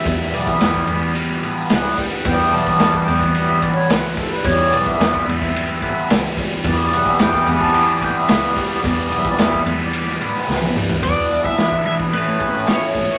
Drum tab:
RD |x-x-x-x-x-x-x-x-|x-x-x-x-x-x-x-x-|x-x-x-x-x-x-x-x-|x-x-x-x-x-x-x-x-|
SD |-o--o-------o---|----o-------o---|----o-------o---|----oo------o---|
T1 |----------------|----------------|----------------|----------------|
T2 |----------------|----------------|----------------|----------------|
FT |----------------|----------------|----------------|----------------|
BD |o--o-o--------o-|o--o-o-o--o---o-|o--o-o-o--o---o-|o--o-o-o--o---o-|

RD |x-x-x-x-x-x-----|x-x-x-x-x-x-x-x-|
SD |----oo---o-oo---|----o-------o---|
T1 |-------------o--|----------------|
T2 |--------------o-|----------------|
FT |---------------o|----------------|
BD |o--o-o----------|o--o-o-o--o---o-|